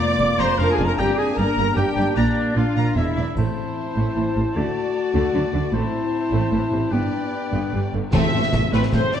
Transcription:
Already playing: F2 A#3 F4 D5 D6
0.19 F1 F2 D5
0.39 F1 F2 C5 A#5 C6
0.58 F1 F2 A#3 D4 F4 A#4 F5 A#5
0.71 G#4 G#5
0.78 F1 F2 D5
0.84 A#4 A#5
0.98 G1 G2 A#3 C4 D4 G4 G5 A#5
1.17 G#4 G#5
1.36 G1 G2 A#3 D4 A#4 D5 A#5
1.57 G1 G2 A#5
1.76 G1 G2 A#3 D4 G4 G5
1.96 G1 G2 D5
2.15 A#1 A#2 A#3 D4 D5 A#5
2.55 A#1 A#2 A#3 D4 F4 D5 F5
2.76 A#1 A#2 A#5
2.96 E1 E2 G#3 B3 D4 E4 E5
3.17 E1 E2 D5
3.36 A1 A2 A3 C4 E4 C5 A5, triangle
3.96 A1 A2 A3
4.16 A1 A2 E3
4.36 A1 A2 C3
4.55 D2 D3 A3 F#4 D5
5.14 D2 D3 A3
5.34 D2 D3 F#3
5.53 D2 D3
5.72 A1 A2 A3 C4 E4 C5 A5
6.32 A1 A2 A3
6.52 A1 A2 E3
6.71 A1 A2 C3
6.91 G1 G2 B3 D4 G4 B4 D5 G5
7.53 G1 G2 B3
7.73 G1 G2 G3
7.93 G1 G2 D3
8.13 A1 A2 A3 C4 E5, concert bass drum, snare, crash, tam-tam
8.33 A1 A2 A3 C4
8.43 snare
8.53 A1 A2 A3, concert bass drum, snare
8.73 A1 A2 A3 C4 B4, snare
8.83 snare
8.92 A1 A2 A3 C4 C5, concert bass drum, snare
9.12 D5, snare

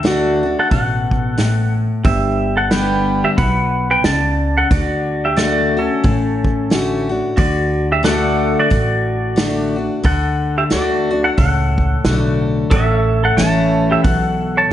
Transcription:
Already playing: D2
0.03 D3 A3 D4 F#4 D5, snare, open hi-hat
0.43 D4 F#4
0.59 A4 F#5
0.70 A1 B2 A4 F#5, kick, open hi-hat
1.11 kick
1.38 A2, snare, open hi-hat
2.04 G1 G2 G4 E5, kick, open hi-hat
2.57 A4 F#5
2.71 D3 G3 B3 G4 B4 G5, snare, open hi-hat
3.24 G4 E5
3.37 B1 B2 B4 F#5, kick, open hi-hat
3.91 B4 G5
4.04 C#2 C#3 D5 A5, snare, open hi-hat
4.58 A4 F#5
4.71 D2 D3 F#4 D5, kick, open hi-hat
5.25 G4 E5
5.36 D3 A3 D4 F#4 D5, snare, open hi-hat
5.77 C#4 F#4 A4
6.04 A1 A2, kick, open hi-hat
6.44 kick
6.70 D3 A3 F#4, snare, open hi-hat
7.09 D4 F#4
7.37 D2 D3 F#4 D5, kick, open hi-hat
7.92 G4 E5
8.03 D3 A3 D4 F#4 A4 D5 F#5, snare, open hi-hat
8.08 F#5
8.60 F#4 D5
8.70 A1 A2 F#4, kick, open hi-hat
9.36 D3 A3 D4 F#4, snare, open hi-hat
9.76 D4 F#4
10.04 D2 D3 A4 F#5, kick, open hi-hat
10.58 G4 E5
10.70 D2 D3 A3 D4 F#4 D5, snare, open hi-hat
11.11 D4 F#4
11.24 A4 F#5
11.37 C#2 A2 A4 F#5, kick, open hi-hat
11.78 kick
12.05 B1 D3 A3 D4 F#4, snare, open hi-hat
12.71 A1 A2 A4 C#5 E5 F#5, kick, open hi-hat
12.98 E5
13.24 A4 F#5
13.37 A1 E3 A3 C#4 E4 C#5 A5, snare, open hi-hat
13.91 G4 E5
14.03 B1 B2 A4 F#5, kick, open hi-hat
14.57 C#5 A5

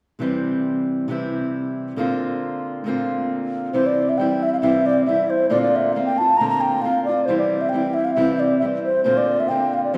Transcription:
0.19 C3 E3 G3 C4
0.23 E4
1.08 C3 E3 G3 C4 E4
1.96 A#2 D3 A#3 C4 F4
2.84 A#2 D3 A#3 C4
2.88 F4
3.73 C3 E3 G3 C4 E4 C5
3.86 D5
4.09 E5
4.18 E3 G3 C4 E4 G5
4.43 E5
4.53 F5
4.61 C3 E3 G3 C4 E4 E5
4.86 D5
5.05 E3 G3 C4 E4 E5
5.30 C5
5.50 A#2 D3 A#3 C4 F4 D5
5.62 D5
5.76 E5
5.93 D3 A#3 C4 F5
5.97 F4
6.06 G5
6.18 C4 F4 A5
6.22 A#3
6.37 A#2 D3 A#3 A#5
6.41 C4 F4
6.49 A#5
6.61 G5
6.82 D3 A#3 C4 F4 F5
7.05 F4 D5
7.10 A#3 C4
7.25 C3 E3 G3 C5
7.29 C4 E4
7.38 D5
7.61 E5
7.69 E3 G5
7.74 G3 C4 E4
7.94 E5
8.05 F5
8.14 C3 E3 G3 E5
8.18 C4 E4
8.36 D5 E5
8.59 E3 G3 E5
8.64 C4 E4
8.85 C5
9.04 A#2 D3 A#3 C4 F4 C5
9.17 D5
9.40 E5
9.49 D3 A#3 C4 F4 G5
9.74 F5
9.84 D5
9.93 C3 F3 C4 C5

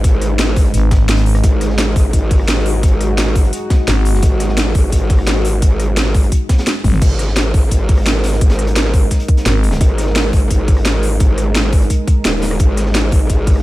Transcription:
Already playing: G#1 G#3 D#4 B4
0.04 kick, closed hi-hat
0.22 cross-stick, closed hi-hat
0.39 snare, closed hi-hat
0.48 snare
0.56 kick, closed hi-hat, open hi-hat
0.65 closed hi-hat
0.74 G#1, closed hi-hat
0.91 kick, snare, closed hi-hat
1.08 snare, closed hi-hat
1.17 snare, closed hi-hat
1.26 open hi-hat
1.35 cross-stick, closed hi-hat
1.44 G#1 F#4, kick, closed hi-hat
1.61 cross-stick, snare, closed hi-hat
1.70 snare
1.78 snare, closed hi-hat
1.96 G#1, kick, closed hi-hat, open hi-hat
2.13 G#1, kick, closed hi-hat
2.30 kick, closed hi-hat, open hi-hat
2.40 cross-stick
2.48 snare, closed hi-hat
2.57 snare
2.66 open hi-hat
2.83 kick, closed hi-hat
3.01 cross-stick, closed hi-hat
3.18 snare, closed hi-hat
3.27 snare
3.35 kick, closed hi-hat, open hi-hat
3.44 closed hi-hat
3.53 closed hi-hat
3.70 kick, snare, closed hi-hat
3.88 G#1, snare, closed hi-hat
4.05 closed hi-hat, open hi-hat
4.14 snare
4.22 G#1, kick, closed hi-hat
4.40 cross-stick, snare, closed hi-hat
4.49 snare
4.58 snare, closed hi-hat
4.74 G#1, kick, closed hi-hat, open hi-hat
4.92 G#1, kick, closed hi-hat
5.10 kick, closed hi-hat, open hi-hat
5.19 cross-stick
5.27 snare, closed hi-hat
5.36 snare
5.45 closed hi-hat, open hi-hat
5.62 kick, closed hi-hat
5.80 cross-stick, closed hi-hat
5.97 snare, closed hi-hat
6.06 snare
6.14 kick, closed hi-hat, open hi-hat
6.23 closed hi-hat
6.32 kick, closed hi-hat
6.49 kick, snare, closed hi-hat
6.58 snare, closed hi-hat
6.66 snare, closed hi-hat
6.84 G#1, kick, snare, closed hi-hat, open hi-hat, high tom
6.93 snare, mid tom
7.02 G#1 G#3 D#4 A#4, kick, closed hi-hat, crash
7.19 cross-stick, snare, closed hi-hat
7.28 snare
7.36 snare, closed hi-hat
7.54 G#1, kick, closed hi-hat, open hi-hat
7.71 G#1, kick, closed hi-hat
7.89 kick, closed hi-hat, open hi-hat
7.98 cross-stick
8.06 snare, closed hi-hat
8.15 snare
8.24 snare, closed hi-hat, open hi-hat
8.32 snare
8.41 kick, closed hi-hat
8.50 snare, closed hi-hat
8.59 cross-stick, snare, closed hi-hat
8.67 closed hi-hat
8.76 snare, closed hi-hat
8.85 snare
8.93 kick, closed hi-hat, open hi-hat
9.11 kick, snare, closed hi-hat
9.20 closed hi-hat
9.28 kick, closed hi-hat
9.37 snare, closed hi-hat
9.45 G#1, snare, closed hi-hat
9.63 closed hi-hat, open hi-hat
9.71 snare, closed hi-hat
9.81 G#1, kick, closed hi-hat
9.98 cross-stick, snare, closed hi-hat
10.07 snare
10.15 snare, closed hi-hat
10.33 G#1, kick, closed hi-hat, open hi-hat
10.51 G#1, kick, closed hi-hat
10.68 kick, closed hi-hat, open hi-hat
10.77 cross-stick
10.85 snare, closed hi-hat
10.94 snare
11.03 closed hi-hat, open hi-hat
11.20 kick, closed hi-hat
11.38 cross-stick, closed hi-hat
11.55 snare, closed hi-hat
11.64 snare
11.73 kick, closed hi-hat, open hi-hat
11.82 closed hi-hat
11.90 kick, closed hi-hat
12.08 kick, closed hi-hat
12.25 D#1, snare, closed hi-hat
12.42 snare, closed hi-hat, open hi-hat
12.51 cross-stick
12.59 G#1 G#4, kick, closed hi-hat
12.77 cross-stick, snare, closed hi-hat
12.86 snare
12.95 snare, closed hi-hat
13.11 G#1, kick, closed hi-hat, open hi-hat
13.29 G#1, kick, closed hi-hat
13.47 kick, closed hi-hat, open hi-hat
13.56 cross-stick

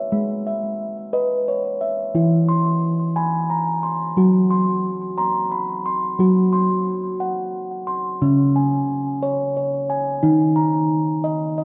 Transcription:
Already playing: C#5 D#5 E5
0.12 G#3
0.47 E5
1.13 B4 D#5
1.48 C#5
1.81 E5
2.15 E3 E4
2.49 C6
3.16 G#5 B5
3.50 A#5
3.83 C6
4.17 F#3 F#4
4.51 C6
5.18 A#5 C6
5.52 B5
5.86 C6
6.19 F#3 F#4
6.53 C6
7.20 F#5
7.87 C6
8.22 C#3 C#4
8.56 G#5
9.23 C#5
9.57 C#5
9.90 G#5
10.23 D#3 D#4
10.56 A#5
11.24 D#5
11.58 D#5

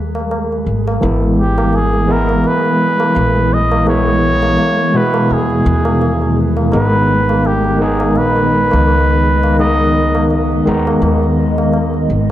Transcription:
Already playing: D#2 G#3
0.15 tabla na
0.31 tabla na
0.52 tabla na
0.66 G#1
0.88 tabla na
1.01 G#1 E3 G#3 B3 E4, tabla na
1.24 tabla na
1.39 G4
1.58 tabla na
1.73 G#4, tabla na
1.93 tabla na
2.07 E3 G#3 B3 E4
2.12 A#4
2.29 tabla na
2.44 B4, tabla na
2.65 tabla na
3.00 tabla na
3.15 A#1, tabla na
3.35 tabla na
3.54 D#5
3.72 tabla na
3.86 E3 G#3 B3 E4 C#5, tabla na
4.07 tabla na
4.43 tabla na
4.58 tabla na
4.78 tabla na
4.94 B2 G#3 B3 E4 B4
5.14 tabla na
5.29 D#2 G#4, tabla na
5.50 tabla na
5.66 D#2
5.85 tabla na
6.02 tabla na
6.22 tabla na
6.57 tabla na
6.71 G#1 D#3 G#3 B3 D#4 B4 D#5, tabla na
6.94 tabla na
7.29 tabla na
7.45 G4, tabla na
7.64 tabla na
7.79 D#3 G#3 B3 D#4 G#4
8.00 tabla na
8.16 A#1 B4, tabla na
8.37 tabla na
8.71 C#2, tabla na
8.87 tabla na
9.07 tabla na
9.43 tabla na
9.58 D#3 G#3 B3 D#4 D#5, tabla na
9.79 tabla na
10.15 tabla na
10.31 tabla na
10.52 tabla na
10.66 D#2 D#3 G#3 B3 D#4
10.87 tabla na
11.02 D#2, tabla na
11.23 tabla na
11.58 tabla na
11.73 tabla na
11.94 tabla na
12.10 G#1

